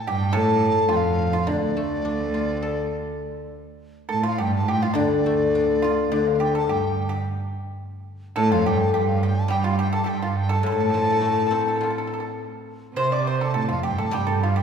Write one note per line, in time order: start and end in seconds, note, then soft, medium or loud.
0.02 0.11 A5 medium
0.07 0.37 G2 medium
0.07 0.32 G4 medium
0.07 0.37 G5 loud
0.33 1.47 A2 medium
0.33 0.91 A2 loud
0.33 0.86 A4 loud
0.33 0.94 A5 loud
0.89 1.50 F2 medium
0.89 1.29 F4 medium
0.93 1.51 F5 medium
0.93 0.97 G5 medium
1.33 1.46 F4 medium
1.47 3.52 D2 medium
1.47 3.22 D3 medium
1.47 3.48 D4 medium
1.47 3.53 D5 medium
1.77 2.92 A3 soft
2.05 3.22 D4 soft
2.34 3.52 F4 soft
2.62 3.81 A4 soft
4.09 4.41 A2 medium
4.09 4.23 A4 medium
4.09 4.24 A5 medium
4.23 4.37 F4 medium
4.23 4.43 F5 medium
4.38 4.55 G2 medium
4.38 4.66 G4 medium
4.38 4.54 G5 medium
4.54 4.95 A2 medium
4.54 4.71 A5 medium
4.68 4.81 G4 medium
4.68 4.84 G5 loud
4.82 4.96 F4 medium
4.82 4.98 F5 medium
4.94 6.07 D2 medium
4.94 6.10 D3 medium
4.94 5.77 D4 medium
4.94 6.11 D5 medium
5.26 6.40 A3 soft
5.55 6.68 D4 soft
5.82 6.09 F4 medium
5.82 6.97 F4 soft
6.11 6.69 D2 medium
6.11 7.81 D3 medium
6.11 6.38 D4 medium
6.11 6.29 D5 medium
6.27 6.43 F5 medium
6.40 6.53 G4 medium
6.40 6.55 G5 medium
6.55 6.67 A4 medium
6.55 6.74 A5 medium
6.68 7.24 G2 medium
6.68 7.08 G4 medium
6.72 7.26 G5 medium
7.09 7.23 G4 medium
8.36 10.07 A2 medium
8.36 8.55 A2 medium
8.36 8.50 A4 medium
8.36 8.53 A5 loud
8.52 8.68 F2 medium
8.52 8.65 F4 medium
8.52 8.68 F5 loud
8.66 8.95 G2 medium
8.66 8.92 G4 medium
8.66 8.82 G5 medium
8.81 8.94 A5 medium
8.93 9.48 G2 medium
8.93 9.20 G4 medium
8.93 9.10 G5 medium
9.08 9.24 F5 medium
9.23 9.49 G4 medium
9.23 9.37 G5 medium
9.35 9.50 A5 medium
9.48 10.04 G2 medium
9.48 11.21 G3 medium
9.48 9.64 G4 medium
9.48 9.66 G5 medium
9.64 9.78 F4 medium
9.64 9.79 F5 medium
9.79 9.92 G4 medium
9.79 9.93 G5 loud
9.93 10.03 A4 medium
9.93 10.10 A5 medium
10.04 10.66 G2 medium
10.04 10.20 G4 medium
10.04 10.08 A4 medium
10.09 10.25 G5 medium
10.22 10.49 F4 medium
10.22 10.38 F5 medium
10.37 10.53 G5 medium
10.49 10.63 A4 medium
10.49 10.65 A5 medium
10.63 12.37 A2 medium
10.63 12.38 A2 medium
10.63 10.71 A4 medium
10.63 10.71 C6 loud
10.70 10.79 A4 soft
10.70 12.35 A5 loud
10.80 10.87 A4 medium
10.90 12.09 F3 soft
10.90 10.95 A4 soft
10.97 11.03 A4 soft
11.05 11.10 A4 soft
11.12 11.18 A4 medium
11.20 12.38 A3 soft
11.20 11.25 A4 soft
11.27 11.32 A4 soft
11.33 11.38 A4 soft
11.39 11.45 A4 soft
11.47 11.51 A4 soft
11.51 12.67 C4 soft
11.51 11.60 A4 medium
11.61 11.67 A4 soft
11.68 11.75 A4 medium
11.76 11.82 A4 soft
11.81 12.97 F4 soft
11.81 11.89 A4 medium
11.90 11.97 A4 soft
11.98 12.05 A4 soft
12.07 12.12 A4 soft
12.14 12.19 A4 medium
12.20 12.27 A4 soft
12.95 13.56 C3 medium
12.95 14.63 C3 soft
12.95 13.10 C5 medium
12.95 13.15 C6 loud
13.12 13.25 D5 medium
13.12 13.30 D6 medium
13.27 13.40 C5 medium
13.27 13.43 C6 medium
13.41 13.53 A4 medium
13.41 13.56 A5 medium
13.54 13.72 A2 medium
13.54 13.68 A4 medium
13.54 13.69 A5 medium
13.69 13.86 F2 medium
13.69 13.83 F4 medium
13.69 13.84 F5 medium
13.83 14.01 G2 medium
13.83 13.97 G4 medium
13.83 14.02 G5 medium
13.98 14.14 A2 medium
13.98 14.12 A4 medium
13.98 14.16 A5 medium
14.11 14.63 G2 medium
14.11 14.63 G3 medium
14.11 14.26 G4 medium
14.11 14.30 G5 medium
14.27 14.41 A4 medium
14.27 14.44 A5 medium
14.43 14.56 F4 medium
14.43 14.59 F5 medium
14.56 14.63 G4 medium
14.56 14.63 G5 medium